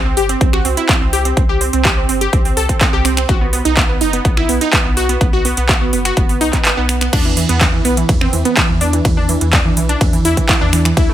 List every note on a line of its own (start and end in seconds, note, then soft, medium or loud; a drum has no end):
0.00 0.12 C2 medium
0.05 0.14 C4 medium
0.17 0.35 G1 medium
0.17 0.27 G4 loud
0.17 open hi-hat loud
0.29 0.38 C4 medium
0.29 closed hi-hat medium
0.41 0.59 C2 loud
0.41 0.51 C4 medium
0.41 kick loud
0.41 closed hi-hat medium
0.53 0.62 F#4 medium
0.53 finger snap medium
0.65 0.74 C2 medium
0.65 0.75 C4 medium
0.65 open hi-hat loud
0.77 0.86 E4 medium
0.77 closed hi-hat medium
0.89 0.99 C4 medium
0.89 kick loud
0.89 clap loud
0.89 closed hi-hat medium
1.01 1.32 C2 loud
1.01 1.10 C4 medium
1.13 1.23 G4 medium
1.13 open hi-hat loud
1.25 1.34 C4 medium
1.25 closed hi-hat medium
1.37 1.68 C2 loud
1.37 1.47 C4 medium
1.37 kick loud
1.37 closed hi-hat medium
1.49 1.58 G4 medium
1.61 1.71 C4 medium
1.61 open hi-hat loud
1.73 2.04 C2 medium
1.73 1.82 C4 medium
1.73 closed hi-hat medium
1.85 1.95 G4 loud
1.85 kick loud
1.85 clap loud
1.85 closed hi-hat medium
1.97 2.06 C4 medium
2.09 2.27 G1 loud
2.09 2.19 C4 medium
2.09 open hi-hat loud
2.21 2.30 G4 loud
2.21 closed hi-hat medium
2.33 2.51 C2 loud
2.33 2.43 C4 medium
2.33 kick loud
2.33 closed hi-hat medium
2.45 2.54 C4 medium
2.45 open hi-hat medium
2.57 2.66 C2 loud
2.57 2.67 A4 medium
2.57 open hi-hat loud
2.69 2.78 C4 medium
2.69 kick medium
2.69 closed hi-hat medium
2.81 2.91 C4 medium
2.81 kick loud
2.81 clap loud
2.81 closed hi-hat medium
2.93 3.24 C2 loud
2.93 3.02 G4 medium
3.05 3.15 C4 medium
3.05 finger snap medium
3.05 open hi-hat loud
3.17 3.26 C4 medium
3.17 finger snap medium
3.17 closed hi-hat medium
3.29 3.60 B1 loud
3.29 3.39 F#4 loud
3.29 kick loud
3.29 closed hi-hat medium
3.41 3.50 B3 medium
3.53 3.63 B3 medium
3.53 open hi-hat loud
3.65 3.96 B1 medium
3.65 3.74 D#4 loud
3.65 closed hi-hat medium
3.77 3.87 B3 medium
3.77 kick loud
3.77 clap loud
3.77 closed hi-hat medium
3.89 3.98 B3 medium
4.01 4.19 F#1 loud
4.01 4.11 D#4 medium
4.01 open hi-hat loud
4.13 4.22 B3 medium
4.13 closed hi-hat medium
4.25 4.43 B1 loud
4.25 4.35 B3 medium
4.25 kick loud
4.25 closed hi-hat medium
4.37 4.46 E4 medium
4.37 finger snap medium
4.49 4.58 B1 medium
4.49 4.59 B3 medium
4.49 open hi-hat loud
4.61 4.70 D#4 loud
4.61 closed hi-hat medium
4.73 4.83 B3 medium
4.73 kick loud
4.73 clap loud
4.73 closed hi-hat medium
4.85 5.16 B1 loud
4.85 4.94 B3 medium
4.97 5.07 F#4 loud
4.97 open hi-hat loud
5.09 5.18 B3 medium
5.09 closed hi-hat medium
5.21 5.52 B1 loud
5.21 5.31 B3 medium
5.21 kick loud
5.21 closed hi-hat medium
5.33 5.42 F#4 medium
5.45 5.55 B3 medium
5.45 open hi-hat loud
5.57 5.88 B1 medium
5.57 5.66 B3 medium
5.57 closed hi-hat medium
5.69 5.79 F#4 loud
5.69 kick loud
5.69 clap loud
5.69 closed hi-hat medium
5.81 5.90 B3 medium
5.93 6.11 F#1 medium
5.93 6.03 B3 medium
5.93 open hi-hat loud
6.05 6.14 F#4 loud
6.05 finger snap medium
6.05 closed hi-hat medium
6.17 6.42 F#1 medium
6.17 6.27 B3 medium
6.17 kick loud
6.17 closed hi-hat medium
6.29 6.38 B3 medium
6.29 open hi-hat medium
6.41 6.50 B1 medium
6.41 6.51 D#4 medium
6.41 open hi-hat loud
6.53 6.62 B3 medium
6.53 kick medium
6.53 clap soft
6.53 closed hi-hat medium
6.65 6.75 B3 medium
6.65 clap loud
6.65 closed hi-hat medium
6.77 7.08 B1 medium
6.77 6.86 B3 medium
6.89 6.99 B3 medium
6.89 finger snap medium
6.89 open hi-hat loud
7.01 7.10 B3 medium
7.01 finger snap medium
7.01 closed hi-hat medium
7.13 7.44 E2 loud
7.13 7.23 D4 loud
7.13 kick loud
7.13 closed hi-hat medium
7.13 ride medium
7.13 crash medium
7.25 7.34 E3 medium
7.37 7.47 E3 medium
7.37 open hi-hat loud
7.49 7.80 E2 medium
7.49 7.58 B3 loud
7.49 closed hi-hat medium
7.61 7.71 E3 medium
7.61 kick loud
7.61 clap loud
7.61 closed hi-hat medium
7.61 ride medium
7.73 7.82 E3 medium
7.85 8.03 B1 loud
7.85 7.95 B3 loud
7.85 open hi-hat loud
7.97 8.06 E3 medium
7.97 closed hi-hat medium
8.09 8.27 E2 loud
8.09 8.19 E3 medium
8.09 kick loud
8.09 closed hi-hat medium
8.09 ride medium
8.21 8.30 C4 medium
8.21 finger snap medium
8.33 8.42 E2 medium
8.33 8.43 E3 medium
8.33 open hi-hat loud
8.45 8.54 B3 loud
8.45 closed hi-hat medium
8.57 8.67 E3 medium
8.57 kick loud
8.57 clap loud
8.57 closed hi-hat medium
8.57 ride medium
8.69 9.00 E2 loud
8.69 8.78 E3 medium
8.81 8.91 D4 medium
8.81 open hi-hat loud
8.93 9.02 E3 medium
8.93 closed hi-hat medium
9.05 9.36 E2 loud
9.05 9.15 E3 medium
9.05 kick loud
9.05 closed hi-hat medium
9.05 ride medium
9.17 9.26 D4 medium
9.29 9.39 E3 medium
9.29 open hi-hat loud
9.41 9.72 E2 medium
9.41 9.50 E3 medium
9.41 closed hi-hat medium
9.53 9.63 D4 loud
9.53 kick loud
9.53 clap loud
9.53 closed hi-hat medium
9.53 ride medium
9.65 9.74 E3 medium
9.77 9.95 B1 loud
9.77 9.87 E3 medium
9.77 open hi-hat loud
9.89 9.98 D4 loud
9.89 closed hi-hat medium
10.01 10.19 E2 loud
10.01 10.11 E3 medium
10.01 kick loud
10.01 closed hi-hat medium
10.01 ride medium
10.13 10.22 E3 medium
10.13 open hi-hat medium
10.25 10.34 E2 medium
10.25 10.35 E4 loud
10.25 open hi-hat loud
10.37 10.46 E3 medium
10.37 kick medium
10.37 closed hi-hat medium
10.49 10.59 E3 medium
10.49 kick loud
10.49 clap loud
10.49 closed hi-hat medium
10.49 ride medium
10.61 10.92 E2 loud
10.61 10.70 D4 medium
10.73 10.83 E3 medium
10.73 finger snap medium
10.73 open hi-hat loud
10.85 10.94 E3 medium
10.85 finger snap medium
10.85 closed hi-hat medium
10.97 11.14 D2 loud
10.97 11.07 E4 loud
10.97 kick loud
10.97 closed hi-hat medium
10.97 ride medium
11.09 11.14 A3 medium